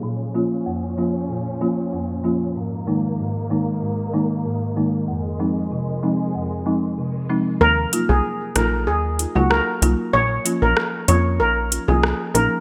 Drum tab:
HH |--------|--------|--------|-x-x-x-x|
SD |--------|--------|--------|---r--r-|

HH |-x-x-x-x|
SD |--r---r-|